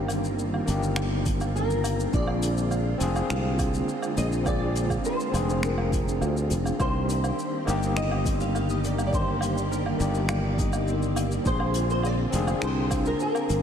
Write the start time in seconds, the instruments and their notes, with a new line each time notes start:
Already playing: fretless electric bass G1, string machine D#3 G3 A#3 C4 F4, tine electric piano A#3 D4 D#4 G4
0.08 closed hi-hat, low woodblock, shaker
0.24 shaker
0.39 shaker
0.54 low woodblock
0.65 fretless electric bass G1, tine electric piano A#3 D4 D#4, closed hi-hat, shaker
0.70 tine electric piano G4
0.83 shaker
0.96 finger snap, low woodblock, shaker
1.26 kick, closed hi-hat, shaker
1.41 low woodblock, shaker
1.56 nylon-string guitar A#4, shaker
1.70 shaker
1.84 closed hi-hat, low woodblock, shaker
2.00 shaker
2.11 fretless electric bass A#1, string machine D3 G#3 A#3, tine electric piano C4 D4 F4, nylon-string guitar D5, kick, shaker
2.16 tine electric piano G#4
2.27 low woodblock
2.42 closed hi-hat, shaker
2.57 shaker
2.71 low woodblock, shaker
2.98 fretless electric bass F1, tine electric piano C4 D4 F4, closed hi-hat, shaker
3.03 tine electric piano G#4
3.16 low woodblock, shaker
3.30 fretless electric bass C2, nylon-string guitar F5, finger snap, shaker
3.59 kick, closed hi-hat, low woodblock, shaker
3.74 shaker
3.89 shaker
4.02 low woodblock, shaker
4.17 fretless electric bass A#1, nylon-string guitar D#5, closed hi-hat, shaker
4.32 shaker
4.44 tine electric piano C4 D4 F4, nylon-string guitar D5, kick, low woodblock, shaker
4.48 tine electric piano G#4
4.75 closed hi-hat, shaker
4.90 kick, low woodblock, shaker
5.05 nylon-string guitar C5, shaker
5.20 shaker
5.31 fretless electric bass F1, tine electric piano C4 D4 F4, closed hi-hat, low woodblock, shaker
5.36 tine electric piano G#4
5.49 shaker
5.63 nylon-string guitar A#4, finger snap, shaker
5.78 low woodblock
5.92 kick, closed hi-hat, shaker
6.08 shaker
6.21 fretless electric bass D2, low woodblock, shaker
6.37 shaker
6.50 fretless electric bass F1, closed hi-hat, shaker
6.65 low woodblock, shaker
6.78 fretless electric bass C2, string machine D#3 G3 A#3 C4 G4, tine electric piano A#3 D4 D#4, harp A#4, nylon-string guitar C5, kick, low woodblock, shaker
6.82 tine electric piano G4
7.09 closed hi-hat, shaker
7.24 low woodblock, shaker
7.39 shaker
7.65 fretless electric bass G1, tine electric piano A#3 D#4 D#5, harp G4, nylon-string guitar F5, closed hi-hat, low woodblock, shaker
7.70 tine electric piano G4
7.83 shaker
7.96 harp D#4, nylon-string guitar D#5, finger snap, shaker
8.11 low woodblock
8.25 harp C4, kick, closed hi-hat, shaker
8.41 nylon-string guitar F5, shaker
8.55 nylon-string guitar F5, low woodblock, shaker
8.69 nylon-string guitar D#5, shaker
8.84 harp A#3, nylon-string guitar D5, closed hi-hat, shaker
8.98 low woodblock, shaker
9.06 nylon-string guitar D5
9.11 tine electric piano A#3 D4 D#4, nylon-string guitar C5, string machine D5, kick, shaker
9.15 tine electric piano G4
9.41 closed hi-hat, low woodblock, shaker
9.57 shaker
9.71 harp A#4, shaker
9.86 low woodblock
9.98 fretless electric bass G1, tine electric piano A#3 D#4 D5, closed hi-hat, shaker
10.03 tine electric piano G4
10.15 shaker
10.29 harp G4, finger snap, low woodblock, shaker
10.58 harp D#4, kick, closed hi-hat, shaker
10.73 low woodblock, shaker
10.88 harp C4, shaker
11.02 shaker
11.16 closed hi-hat, low woodblock, shaker
11.31 shaker
11.43 fretless electric bass A#1, string machine D3 C4 F4 G#4, tine electric piano C4 D4 F4, harp G#4, nylon-string guitar C5, kick, shaker
11.48 tine electric piano G#4
11.60 low woodblock
11.74 closed hi-hat, shaker
11.90 nylon-string guitar C5, shaker
12.03 nylon-string guitar D5, low woodblock, shaker
12.31 fretless electric bass F1, tine electric piano C4 D4 F4, harp F4, closed hi-hat, shaker
12.35 tine electric piano G#4
12.47 low woodblock, shaker
12.62 fretless electric bass C2, harp D4, nylon-string guitar C5, finger snap, shaker
12.91 harp C4, kick, closed hi-hat, low woodblock, shaker
13.06 nylon-string guitar A#4, shaker
13.20 nylon-string guitar A#4, shaker
13.35 low woodblock, shaker
13.49 fretless electric bass G1, harp A#3, closed hi-hat, shaker